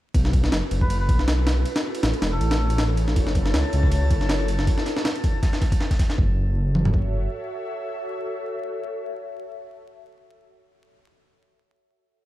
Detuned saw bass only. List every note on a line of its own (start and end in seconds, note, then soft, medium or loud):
0.14 0.51 B1 loud
0.52 0.62 F#1 medium
0.71 1.10 F#1 loud
1.09 1.64 B1 loud
2.03 2.12 A1 medium
2.22 2.39 E1 loud
2.41 3.06 A1 loud
3.08 3.15 A1 medium
3.16 3.53 F#1 loud
3.54 3.63 C#2 medium
3.73 4.12 C#2 loud
4.11 4.66 F#1 loud
6.18 7.27 F#1 loud